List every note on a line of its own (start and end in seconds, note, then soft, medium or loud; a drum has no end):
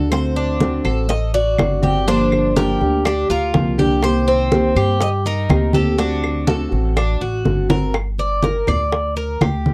0.00 0.78 D2 medium
0.00 0.10 A3 medium
0.00 0.11 D4 medium
0.00 0.10 F#4 medium
0.00 0.34 A4 medium
0.11 0.59 D3 medium
0.11 0.60 A3 medium
0.11 0.60 C4 medium
0.11 0.60 F#4 medium
0.11 1.06 C5 medium
0.11 high bongo medium
0.11 high conga soft
0.11 claves medium
0.36 0.84 D4 medium
0.36 high conga soft
0.60 0.84 D3 medium
0.60 0.84 A3 medium
0.60 0.84 C4 medium
0.60 0.83 F#4 medium
0.60 high bongo medium
0.60 high conga medium
0.84 1.54 A1 medium
0.84 1.08 A3 soft
0.84 1.08 C4 soft
0.84 1.08 F#4 medium
0.84 1.32 A4 medium
0.84 high conga soft
0.84 claves medium
1.09 1.34 D#5 medium
1.09 muted nylon-string guitar stroke medium
1.09 high bongo medium
1.09 high conga soft
1.34 1.82 F#4 medium
1.34 2.08 D5 medium
1.34 high conga soft
1.58 2.75 G1 medium
1.58 1.82 D3 soft
1.58 1.82 A3 medium
1.58 1.82 C4 soft
1.58 1.81 F#4 soft
1.58 high bongo medium
1.58 low bongo medium
1.58 high conga medium
1.58 claves medium
1.82 2.07 A3 medium
1.82 2.07 C4 medium
1.82 2.06 F#4 medium
1.82 2.07 G4 medium
1.82 high conga medium
2.06 2.55 D3 medium
2.06 2.55 F3 medium
2.06 2.56 A#3 medium
2.06 2.55 D4 medium
2.06 2.56 D4 medium
2.06 2.56 G4 medium
2.06 2.57 C5 loud
2.06 high bongo medium
2.06 high conga soft
2.32 high bongo soft
2.32 high conga soft
2.32 claves medium
2.56 2.80 D3 medium
2.56 2.80 F3 medium
2.56 2.80 A#3 medium
2.56 2.81 D4 medium
2.56 3.04 G4 medium
2.56 2.79 G4 medium
2.56 3.02 A#4 medium
2.56 high bongo medium
2.56 high conga medium
2.81 3.27 D2 medium
2.81 3.05 A#3 soft
2.81 3.05 D4 soft
2.81 3.04 G4 soft
2.81 high bongo soft
2.81 high conga soft
3.05 3.29 D4 medium
3.05 3.29 G4 medium
3.05 muted nylon-string guitar stroke medium
3.05 high bongo medium
3.05 high conga soft
3.05 claves medium
3.30 3.53 D2 medium
3.30 3.77 F4 medium
3.30 4.03 A#4 medium
3.30 high conga soft
3.54 4.70 C2 medium
3.54 3.78 F3 soft
3.54 3.78 A#3 soft
3.54 3.77 D4 medium
3.54 3.77 G4 soft
3.54 high bongo medium
3.54 low bongo medium
3.54 high conga medium
3.78 4.02 F3 medium
3.78 4.02 A#3 medium
3.78 4.02 D4 medium
3.78 4.02 G4 medium
3.78 4.26 G4 medium
3.78 high bongo soft
3.78 high conga medium
4.02 4.50 C3 medium
4.02 4.50 D#3 medium
4.02 4.50 A#3 medium
4.02 4.51 C4 medium
4.02 4.52 G4 medium
4.02 4.97 C5 loud
4.02 high bongo medium
4.02 high conga soft
4.02 claves medium
4.28 4.75 C4 medium
4.28 high conga soft
4.51 4.75 C3 medium
4.51 4.75 D#3 medium
4.51 4.75 A#3 medium
4.51 4.75 C4 medium
4.51 4.75 G4 medium
4.51 high bongo medium
4.51 high conga medium
4.76 5.46 G2 medium
4.76 5.00 A#3 soft
4.76 5.00 C4 soft
4.76 5.00 G4 soft
4.76 5.24 G4 medium
4.76 high conga soft
4.76 claves medium
5.00 5.08 D#5 loud
5.00 muted nylon-string guitar stroke medium
5.00 high bongo medium
5.00 high conga soft
5.25 5.73 D#4 medium
5.25 5.72 A#4 medium
5.25 high conga soft
5.49 6.65 D2 medium
5.49 5.73 D#3 soft
5.49 5.73 A#3 soft
5.49 5.73 C4 soft
5.49 5.72 G4 medium
5.49 high bongo medium
5.49 low bongo medium
5.49 high conga medium
5.49 claves medium
5.73 5.98 D#3 medium
5.73 5.98 A#3 medium
5.73 5.98 C4 medium
5.73 5.97 G4 medium
5.73 5.98 A4 medium
5.73 high conga medium
5.98 6.46 D3 medium
5.98 6.46 A3 medium
5.98 6.47 C4 medium
5.98 6.46 D4 medium
5.98 7.41 F#4 medium
5.98 6.48 F#4 medium
5.98 high bongo medium
5.98 high conga soft
6.23 high bongo soft
6.23 high conga soft
6.23 claves medium
6.47 6.71 D3 medium
6.47 6.71 A3 medium
6.47 6.71 C4 medium
6.47 6.70 F#4 medium
6.47 6.95 A4 medium
6.47 high bongo medium
6.47 high conga medium
6.71 7.17 A1 medium
6.71 6.95 A3 soft
6.71 6.96 C4 soft
6.71 6.95 F#4 medium
6.71 high bongo soft
6.71 high conga soft
6.96 7.20 D4 medium
6.96 muted nylon-string guitar stroke medium
6.96 high bongo medium
6.96 high conga soft
6.96 claves medium
7.21 7.44 A1 medium
7.21 7.69 F#4 medium
7.21 high conga soft
7.45 8.61 G1 medium
7.45 7.69 D3 soft
7.45 7.69 A3 soft
7.45 7.69 C4 medium
7.45 7.68 F#4 medium
7.45 high bongo medium
7.45 high conga medium
7.69 7.94 A3 medium
7.69 7.94 C4 medium
7.69 7.93 F#4 medium
7.69 7.94 A#4 medium
7.69 low bongo loud
7.69 high conga medium
7.94 high bongo medium
7.94 high conga soft
7.94 claves medium
8.18 8.43 D5 medium
8.18 high conga soft
8.43 8.67 A#4 medium
8.43 high bongo medium
8.43 high conga medium
8.67 9.37 D2 medium
8.67 9.15 D5 medium
8.67 high conga soft
8.67 low conga medium
8.67 claves medium
8.92 high bongo medium
8.92 high conga soft
9.16 9.40 A#4 medium
9.16 high conga soft
9.41 9.74 D2 medium
9.41 9.74 G4 medium
9.41 high bongo medium
9.41 low bongo medium
9.41 high conga medium
9.41 claves medium
9.66 high conga medium